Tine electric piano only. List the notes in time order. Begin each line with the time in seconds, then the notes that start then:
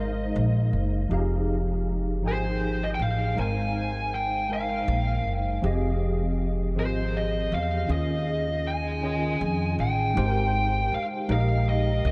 Already playing: G#3 D#4 A#4
0.00 C5 F5
1.09 F3 D#4 G4 G#4
1.13 F5
2.22 F3 D#4 G#4 G5 G#5
3.35 G#3 D#4 A#4 C5
3.39 F5
4.49 G#3 D#4 A#4 C5 F5
5.62 F3 C4 G4 G#4 D#5
6.75 F3 C4 G4 G#4 D#5
7.87 D#3 C#4 F4 G#4 D#5
9.01 D#3 C#4 F4 G#4 D#5
10.14 G#3 D#4 G4 A#4
10.18 C5
11.28 G#3 D#4 G4 A#4
11.32 D#5